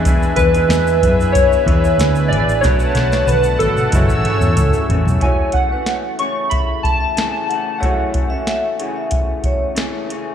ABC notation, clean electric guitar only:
X:1
M:4/4
L:1/16
Q:1/4=93
K:F#m
V:1 name="Clean electric guitar"
[E,B,DG]3 [E,B,DG]3 [E,B,DG]4 [E,B,DG]4 [E,B,DG]2 | [B,,F,A,D]3 [B,,F,A,D]3 [B,,F,A,D]2 [F,,C,E,A,C]2 [F,,C,E,A,C]4 [C,E,A,C]2 | [F,,C,E,A,C]3 [E,A,C]3 [C,E,A,C]6 [C,E,A,C]2 [C,E,A,C]2 | [F,,C,E,A,C]3 [E,A,C]3 [C,E,A,C]6 [C,E,A,C]2 [C,E,A,C]2 |]